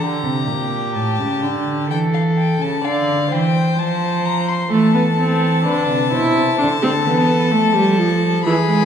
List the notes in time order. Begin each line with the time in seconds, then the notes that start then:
0.00 D3 G4 A#5
0.23 C3
0.47 A#2
0.95 A2 A5
1.19 C#3
1.43 D3
1.89 E3 A4 G5
2.14 F5
2.37 G5
2.60 C#3 A5
2.83 D3 D5 F5
3.30 E3 C5 G5
3.78 F3 A5
4.25 A#5
4.48 C6
4.70 E3 A3 A4 A5
4.94 B3
5.18 C4
5.64 D3 D4 B4
5.88 C3
6.11 B2 E4 C5
6.35 C3
6.58 D3 D4 A4
6.82 C4
7.05 E3 B3
7.51 F3 A3
7.75 G3
7.98 F3
8.44 E3 G#4 B5
8.68 G#3